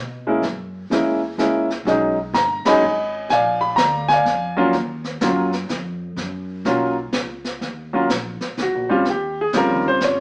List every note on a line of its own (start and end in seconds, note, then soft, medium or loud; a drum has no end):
0.00 0.41 B2 medium
0.27 0.42 G#3 medium
0.27 0.42 A#3 medium
0.27 0.42 C#4 medium
0.27 0.42 E4 medium
0.42 0.89 F#2 medium
0.42 brush sweep soft
0.42 snare soft
0.90 1.37 E2 medium
0.90 1.19 G#3 medium
0.90 1.19 A#3 soft
0.90 1.20 C#4 soft
0.90 1.20 E4 medium
0.90 snare soft
1.38 1.85 C#2 medium
1.38 1.67 G#3 medium
1.38 1.67 A#3 soft
1.38 1.67 C#4 medium
1.38 1.68 E4 medium
1.38 snare medium
1.38 hi-hat pedal soft
1.70 snare soft
1.85 2.32 B1 medium
1.85 2.15 F#3 medium
1.85 2.15 G#3 medium
1.85 2.15 C#4 medium
1.85 2.16 D#4 medium
1.85 brush sweep soft
1.85 snare soft
2.33 2.63 G1 medium
2.33 2.67 A#5 medium
2.33 snare medium
2.33 hi-hat pedal medium
2.65 2.81 F#3 medium
2.65 2.81 G#3 medium
2.65 2.81 C#4 medium
2.65 2.82 D#4 medium
2.65 3.28 D#5 medium
2.65 3.28 G#5 medium
2.65 3.11 B5 loud
2.65 muted upright bass stroke soft
2.65 snare medium
2.65 ride medium
2.82 3.29 G#1 medium
3.29 3.77 A#1 medium
3.29 4.07 D5 medium
3.29 4.07 F5 medium
3.29 3.60 G#5 medium
3.29 brush sweep soft
3.29 snare soft
3.61 3.77 B5 medium
3.76 4.25 D2 medium
3.76 4.06 A#5 medium
3.76 snare medium
3.76 hi-hat pedal medium
4.08 4.54 G#5 loud
4.08 snare soft
4.13 4.72 D5 medium
4.13 4.72 F5 medium
4.25 4.72 F2 medium
4.25 snare soft
4.57 4.72 F#3 medium
4.57 4.72 A#3 medium
4.57 4.72 C#4 medium
4.57 4.73 F4 medium
4.73 5.20 D#2 medium
4.73 brush sweep soft
4.73 snare soft
5.04 snare soft
5.21 5.69 F#2 medium
5.21 5.50 F#3 medium
5.21 5.50 A#3 medium
5.21 5.50 C#4 medium
5.21 5.51 F4 medium
5.21 snare medium
5.21 hi-hat pedal medium
5.52 snare soft
5.69 6.16 F2 medium
5.69 snare soft
6.16 6.64 F#2 medium
6.16 brush sweep soft
6.16 snare soft
6.65 7.12 B1 medium
6.65 6.94 F#3 medium
6.65 6.94 A#3 medium
6.65 6.94 C#4 medium
6.65 6.94 F4 medium
6.65 snare soft
7.13 7.59 C#2 medium
7.13 snare medium
7.13 hi-hat pedal medium
7.44 snare soft
7.61 8.08 D#2 medium
7.61 brush sweep soft
7.61 snare soft
7.93 8.08 F#3 medium
7.93 8.08 A#3 medium
7.93 8.08 C#4 medium
7.93 8.09 F4 medium
8.09 8.39 A#1 medium
8.09 snare medium
8.09 hi-hat pedal medium
8.41 muted upright bass stroke soft
8.41 snare soft
8.57 8.74 C#2 medium
8.57 snare soft
8.62 8.90 F#4 medium
8.74 8.90 A#1 soft
8.89 9.05 F#1 medium
8.89 9.04 G3 medium
8.89 9.04 C4 medium
8.89 9.04 C#4 medium
8.89 9.05 F4 medium
9.05 9.52 D#2 medium
9.05 brush sweep soft
9.05 snare soft
9.10 9.38 G4 medium
9.41 9.55 G#4 medium
9.53 9.70 F2 medium
9.53 10.20 G3 medium
9.53 10.20 C4 soft
9.53 10.20 C#4 medium
9.53 10.20 F4 medium
9.53 snare medium
9.53 hi-hat pedal medium
9.58 9.86 A#4 medium
9.70 9.85 D#2 medium
9.86 10.00 C#2 medium
9.86 10.02 C5 medium
10.01 10.20 G2 medium
10.01 10.20 C#5 medium
10.01 snare medium
10.01 hi-hat pedal medium